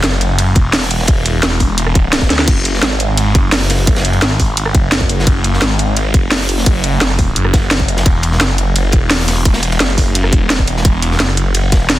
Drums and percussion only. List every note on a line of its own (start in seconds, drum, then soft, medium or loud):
0.03 snare loud
0.03 closed hi-hat loud
0.03 ride medium
0.12 cross-stick soft
0.12 ride soft
0.21 closed hi-hat medium
0.21 ride medium
0.39 closed hi-hat medium
0.39 ride medium
0.55 kick loud
0.55 closed hi-hat medium
0.55 ride medium
0.73 snare loud
0.73 closed hi-hat loud
0.73 open hi-hat medium
0.82 cross-stick soft
0.82 snare soft
0.90 closed hi-hat medium
0.90 ride medium
0.99 snare soft
1.07 kick loud
1.07 closed hi-hat loud
1.07 ride loud
1.26 closed hi-hat medium
1.26 ride medium
1.43 snare loud
1.43 closed hi-hat medium
1.43 ride medium
1.52 cross-stick soft
1.52 ride soft
1.60 kick medium
1.60 open hi-hat medium
1.60 ride medium
1.78 closed hi-hat loud
1.78 ride medium
1.87 cross-stick soft
1.95 kick loud
1.95 closed hi-hat medium
1.95 ride medium
2.13 snare loud
2.13 closed hi-hat loud
2.13 ride medium
2.21 kick medium
2.21 cross-stick soft
2.21 snare loud
2.21 ride medium
2.30 snare medium
2.30 closed hi-hat medium
2.39 snare medium
2.48 kick loud
2.48 closed hi-hat loud
2.48 crash medium
2.48 ride medium
2.65 closed hi-hat medium
2.65 ride medium
2.74 snare soft
2.83 snare loud
2.83 closed hi-hat loud
2.83 ride loud
2.91 cross-stick soft
2.91 ride soft
3.00 closed hi-hat medium
3.00 ride medium
3.17 closed hi-hat loud
3.17 ride medium
3.35 kick loud
3.35 closed hi-hat medium
3.35 ride medium
3.52 snare loud
3.52 closed hi-hat loud
3.52 open hi-hat medium
3.61 cross-stick soft
3.61 snare soft
3.69 snare loud
3.69 closed hi-hat medium
3.69 ride medium
3.79 ride soft
3.87 kick loud
3.87 closed hi-hat medium
3.87 ride medium
3.96 snare loud
3.96 ride medium
4.05 closed hi-hat medium
4.05 ride soft
4.13 ride medium
4.22 snare loud
4.22 closed hi-hat medium
4.22 ride medium
4.30 cross-stick soft
4.30 ride soft
4.40 kick medium
4.40 open hi-hat medium
4.40 ride medium
4.57 closed hi-hat medium
4.57 ride medium
4.66 cross-stick medium
4.75 kick loud
4.75 closed hi-hat medium
4.75 ride medium
4.92 snare loud
4.92 closed hi-hat medium
4.92 ride medium
5.01 kick medium
5.01 cross-stick soft
5.09 closed hi-hat medium
5.09 ride medium
5.19 snare medium
5.27 kick loud
5.27 closed hi-hat medium
5.27 ride medium
5.44 closed hi-hat medium
5.44 ride medium
5.54 snare soft
5.61 snare loud
5.61 closed hi-hat medium
5.61 ride medium
5.71 cross-stick soft
5.71 ride soft
5.79 closed hi-hat medium
5.79 ride medium
5.97 closed hi-hat medium
5.97 ride medium
6.14 kick loud
6.14 closed hi-hat medium
6.14 ride medium
6.31 snare loud
6.31 closed hi-hat medium
6.31 open hi-hat medium
6.40 cross-stick soft
6.40 snare soft
6.49 closed hi-hat medium
6.49 ride medium
6.58 snare soft
6.66 kick loud
6.66 closed hi-hat medium
6.66 ride loud
6.84 closed hi-hat medium
6.84 ride medium
7.01 snare loud
7.01 closed hi-hat medium
7.01 ride medium
7.10 cross-stick soft
7.10 ride soft
7.19 kick medium
7.19 open hi-hat medium
7.19 ride medium
7.36 closed hi-hat medium
7.45 cross-stick soft
7.53 kick loud
7.53 snare loud
7.53 closed hi-hat medium
7.53 ride medium
7.71 snare loud
7.71 closed hi-hat medium
7.71 ride medium
7.79 kick medium
7.79 cross-stick soft
7.79 ride soft
7.88 closed hi-hat medium
7.88 ride medium
7.97 snare medium
7.97 ride medium
8.06 kick loud
8.06 closed hi-hat medium
8.06 ride medium
8.23 closed hi-hat medium
8.23 ride medium
8.32 snare soft
8.41 snare loud
8.41 closed hi-hat medium
8.41 ride medium
8.49 cross-stick soft
8.49 ride soft
8.58 closed hi-hat medium
8.58 ride medium
8.76 closed hi-hat medium
8.76 ride medium
8.92 kick loud
8.92 closed hi-hat medium
8.92 ride medium
9.10 snare loud
9.10 closed hi-hat medium
9.10 open hi-hat medium
9.19 cross-stick soft
9.19 snare soft
9.28 snare loud
9.28 closed hi-hat medium
9.28 ride medium
9.36 ride soft
9.45 kick loud
9.45 closed hi-hat medium
9.45 ride medium
9.54 snare loud
9.54 ride medium
9.63 closed hi-hat medium
9.63 ride soft
9.72 ride medium
9.80 snare loud
9.80 closed hi-hat medium
9.80 ride loud
9.89 cross-stick soft
9.89 ride soft
9.98 kick medium
9.98 open hi-hat medium
9.98 ride medium
10.15 closed hi-hat medium
10.15 ride medium
10.24 cross-stick soft
10.32 kick loud
10.32 closed hi-hat medium
10.32 ride medium
10.50 snare loud
10.50 closed hi-hat medium
10.50 ride medium
10.59 kick medium
10.59 cross-stick soft
10.68 closed hi-hat medium
10.68 ride medium
10.77 snare medium
10.85 kick loud
10.85 closed hi-hat loud
10.85 ride medium
11.02 closed hi-hat medium
11.02 ride medium
11.11 snare soft
11.20 snare loud
11.20 closed hi-hat loud
11.20 ride medium
11.29 cross-stick soft
11.29 ride soft
11.37 closed hi-hat medium
11.37 ride medium
11.54 closed hi-hat medium
11.54 ride medium
11.72 kick loud
11.72 snare loud
11.72 closed hi-hat medium
11.72 ride medium
11.80 ride soft
11.90 snare loud
11.90 closed hi-hat loud
11.90 ride medium